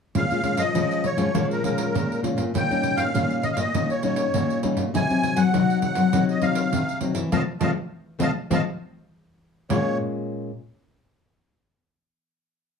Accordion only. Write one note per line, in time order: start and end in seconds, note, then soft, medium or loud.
0.17 0.62 F5 loud
0.59 1.06 D#5 loud
1.05 1.47 C#5 medium
1.52 1.64 A#4 medium
1.65 2.21 A#4 medium
2.56 3.02 G5 loud
2.97 3.45 F5 loud
3.43 3.51 D#5 medium
3.52 3.59 F5 medium
3.59 3.90 D#5 loud
3.91 4.03 C#5 medium
4.04 4.60 C#5 medium
4.96 5.41 G#5 loud
5.37 5.80 F#5 loud
5.84 6.25 F#5 medium
6.30 6.45 D#5 medium
6.42 6.98 F5 medium
7.32 7.42 D#5 medium
7.32 7.42 F5 medium
7.32 7.42 A5 medium
7.60 7.71 D#5 medium
7.60 7.71 F5 medium
7.60 7.71 A5 medium
8.21 8.31 D#5 medium
8.21 8.31 F5 medium
8.21 8.31 A5 medium
8.53 8.62 D#5 medium
8.53 8.62 F5 medium
8.53 8.62 A5 medium
9.70 9.98 C#5 medium